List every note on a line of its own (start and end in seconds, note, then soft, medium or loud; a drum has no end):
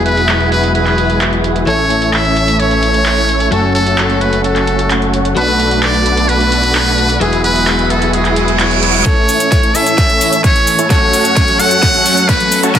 0.00 1.65 E1 medium
0.00 1.65 E3 medium
0.00 1.64 F#3 medium
0.00 1.64 G#3 medium
0.00 1.64 B3 medium
0.00 1.65 E4 medium
0.00 1.65 F#4 medium
0.00 1.65 G#4 medium
0.00 1.65 B4 medium
0.00 1.65 E5 medium
0.06 0.49 B4 medium
0.06 closed hi-hat medium
0.17 closed hi-hat soft
0.29 clap loud
0.29 closed hi-hat medium
0.40 closed hi-hat soft
0.52 0.73 B4 medium
0.52 closed hi-hat medium
0.63 closed hi-hat soft
0.75 1.40 B4 medium
0.75 closed hi-hat medium
0.86 clap soft
0.86 closed hi-hat soft
0.98 closed hi-hat medium
1.10 closed hi-hat soft
1.21 clap loud
1.21 closed hi-hat medium
1.33 closed hi-hat soft
1.44 closed hi-hat medium
1.56 closed hi-hat soft
1.66 3.50 A1 medium
1.66 3.49 E3 medium
1.66 3.50 E3 medium
1.66 3.49 A3 medium
1.66 3.50 A3 medium
1.66 3.49 C#4 medium
1.66 5.33 C#4 medium
1.66 3.49 C#4 medium
1.66 3.49 E4 medium
1.66 3.50 A4 medium
1.66 2.15 C#5 medium
1.66 3.49 C#5 medium
1.66 3.49 E5 medium
1.66 closed hi-hat medium
1.90 closed hi-hat medium
2.02 closed hi-hat soft
2.13 2.61 E5 loud
2.13 clap loud
2.13 closed hi-hat medium
2.25 closed hi-hat soft
2.36 closed hi-hat medium
2.48 closed hi-hat soft
2.60 3.53 C#5 loud
2.60 closed hi-hat medium
2.71 closed hi-hat soft
2.83 closed hi-hat medium
2.94 closed hi-hat soft
3.06 clap loud
3.06 closed hi-hat medium
3.17 closed hi-hat soft
3.29 closed hi-hat medium
3.40 closed hi-hat soft
3.51 5.34 F#1 medium
3.51 5.33 F#3 medium
3.51 5.35 F#3 medium
3.51 5.34 A3 medium
3.51 7.17 A3 medium
3.51 5.34 A3 medium
3.51 5.34 C#4 medium
3.51 5.34 F#4 medium
3.51 3.74 A4 medium
3.51 5.34 A4 medium
3.51 5.34 C#5 medium
3.51 5.34 F#5 medium
3.51 closed hi-hat medium
3.75 4.23 A4 medium
3.75 closed hi-hat medium
3.87 closed hi-hat soft
3.98 clap loud
3.98 closed hi-hat medium
4.10 closed hi-hat soft
4.21 4.44 B4 medium
4.21 closed hi-hat medium
4.33 closed hi-hat soft
4.44 5.10 A4 medium
4.44 closed hi-hat medium
4.56 clap soft
4.56 closed hi-hat soft
4.67 closed hi-hat medium
4.79 closed hi-hat soft
4.90 clap loud
4.90 closed hi-hat medium
5.02 closed hi-hat soft
5.14 closed hi-hat medium
5.25 closed hi-hat soft
5.35 7.19 B1 medium
5.35 7.18 F#3 medium
5.35 7.18 A3 medium
5.35 7.18 B3 medium
5.35 9.02 B3 medium
5.35 7.19 D4 medium
5.35 7.18 D4 medium
5.35 7.19 D4 medium
5.35 7.18 F#4 medium
5.35 7.19 A4 medium
5.35 5.84 B4 loud
5.35 7.18 B4 medium
5.35 7.18 F#5 medium
5.35 closed hi-hat medium
5.60 closed hi-hat medium
5.71 closed hi-hat soft
5.82 6.30 D5 loud
5.82 clap loud
5.82 closed hi-hat medium
5.94 closed hi-hat soft
6.06 closed hi-hat medium
6.17 closed hi-hat soft
6.29 7.22 B4 loud
6.29 closed hi-hat medium
6.40 closed hi-hat soft
6.52 closed hi-hat medium
6.63 closed hi-hat soft
6.75 clap loud
6.75 closed hi-hat medium
6.87 closed hi-hat soft
6.98 closed hi-hat medium
7.10 closed hi-hat medium
7.20 9.03 E1 medium
7.20 9.04 E3 medium
7.20 9.02 F#3 medium
7.20 9.03 G#3 medium
7.20 9.03 B3 medium
7.20 9.03 E4 medium
7.20 9.04 F#4 medium
7.20 9.03 F#4 medium
7.20 7.44 G#4 medium
7.20 9.04 G#4 medium
7.20 9.03 B4 medium
7.20 9.03 E5 medium
7.20 closed hi-hat medium
7.33 closed hi-hat soft
7.44 7.92 B4 loud
7.44 closed hi-hat medium
7.56 closed hi-hat soft
7.67 clap loud
7.67 closed hi-hat medium
7.79 closed hi-hat soft
7.90 8.13 A4 medium
7.90 closed hi-hat medium
8.02 closed hi-hat soft
8.13 8.56 G#4 medium
8.13 closed hi-hat medium
8.13 reverse cymbal medium
8.25 clap soft
8.25 closed hi-hat soft
8.36 closed hi-hat medium
8.48 closed hi-hat soft
8.59 8.81 C#5 medium
8.59 clap loud
8.59 closed hi-hat medium
8.71 closed hi-hat soft
8.83 9.77 C#5 medium
8.83 closed hi-hat medium
8.94 closed hi-hat medium
9.04 10.88 A2 medium
9.04 9.72 E3 medium
9.04 10.88 E3 medium
9.04 9.72 A3 medium
9.04 9.49 A3 loud
9.04 12.71 C#4 medium
9.04 9.49 C#4 medium
9.04 9.72 C#4 medium
9.04 12.79 A4 medium
9.04 9.73 A4 medium
9.04 9.49 C#5 medium
9.04 kick loud
9.04 snare soft
9.04 closed hi-hat medium
9.04 riser medium
9.04 shaker soft
9.29 open hi-hat loud
9.29 shaker medium
9.40 closed hi-hat soft
9.40 shaker soft
9.52 kick loud
9.52 snare soft
9.52 closed hi-hat medium
9.52 shaker soft
9.63 10.07 A3 medium
9.63 10.07 C#4 medium
9.63 10.07 E4 medium
9.63 10.07 C#5 medium
9.63 10.07 E5 medium
9.63 closed hi-hat soft
9.74 10.87 E3 medium
9.74 10.87 A3 medium
9.74 10.88 C#4 medium
9.74 10.88 A4 medium
9.74 10.44 E5 loud
9.74 open hi-hat loud
9.74 shaker medium
9.87 closed hi-hat medium
9.87 shaker soft
9.98 kick loud
9.98 snare soft
9.98 closed hi-hat medium
9.98 shaker soft
10.09 10.38 A3 medium
10.09 10.38 C#4 medium
10.09 10.38 E4 medium
10.09 10.38 C#5 medium
10.09 10.38 E5 medium
10.09 closed hi-hat soft
10.21 open hi-hat loud
10.21 shaker medium
10.33 closed hi-hat medium
10.33 shaker soft
10.44 10.87 C#5 loud
10.44 kick loud
10.44 snare soft
10.44 closed hi-hat medium
10.44 shaker soft
10.56 closed hi-hat soft
10.67 open hi-hat loud
10.67 shaker medium
10.79 10.87 A3 medium
10.79 10.88 C#4 medium
10.79 10.87 E4 medium
10.79 10.87 C#5 medium
10.79 10.87 A5 loud
10.79 closed hi-hat medium
10.79 shaker soft
10.89 12.73 F#2 medium
10.89 11.56 F#3 medium
10.89 12.79 F#3 medium
10.89 11.57 A3 medium
10.89 11.34 A3 medium
10.89 11.34 C#4 medium
10.89 11.57 C#4 medium
10.89 11.34 F#4 medium
10.89 11.57 A4 medium
10.89 11.34 C#5 medium
10.89 11.61 C#5 loud
10.89 11.34 F#5 loud
10.89 kick loud
10.89 snare medium
10.89 closed hi-hat medium
10.89 shaker soft
11.13 open hi-hat loud
11.13 shaker medium
11.25 closed hi-hat medium
11.25 shaker soft
11.36 11.45 A3 medium
11.36 11.45 C#4 medium
11.36 11.45 F#4 medium
11.36 11.45 C#5 medium
11.36 kick loud
11.36 snare medium
11.36 closed hi-hat medium
11.36 shaker soft
11.48 11.91 A3 medium
11.48 11.91 C#4 medium
11.48 11.91 F#4 medium
11.48 11.91 C#5 medium
11.48 11.91 F#5 medium
11.48 closed hi-hat soft
11.58 12.72 F#3 medium
11.58 12.72 A3 medium
11.58 12.72 C#4 medium
11.58 12.73 A4 medium
11.58 12.30 F#5 loud
11.58 open hi-hat loud
11.58 shaker medium
11.71 closed hi-hat soft
11.71 shaker soft
11.83 kick loud
11.83 snare medium
11.83 closed hi-hat medium
11.83 shaker soft
11.94 12.23 A3 medium
11.94 12.23 C#4 medium
11.94 12.23 F#4 medium
11.94 12.23 C#5 medium
11.94 12.23 F#5 loud
11.94 closed hi-hat soft
12.06 open hi-hat loud
12.06 shaker medium
12.17 closed hi-hat medium
12.17 shaker soft
12.29 12.61 B4 loud
12.29 kick loud
12.29 snare medium
12.29 closed hi-hat medium
12.29 shaker soft
12.40 closed hi-hat soft
12.52 open hi-hat loud
12.52 shaker medium
12.63 12.72 A3 medium
12.63 12.72 C#4 medium
12.63 12.72 F#4 medium
12.63 12.72 C#5 medium
12.63 12.72 A5 loud
12.63 closed hi-hat medium
12.63 shaker soft
12.74 12.79 B2 medium
12.74 12.79 F#3 medium
12.74 12.79 A3 medium
12.74 12.79 B3 medium
12.74 12.79 D4 medium
12.74 12.79 F#4 medium
12.74 12.79 B4 medium
12.74 12.79 F#5 loud
12.74 kick loud
12.74 snare medium
12.74 closed hi-hat medium
12.74 shaker soft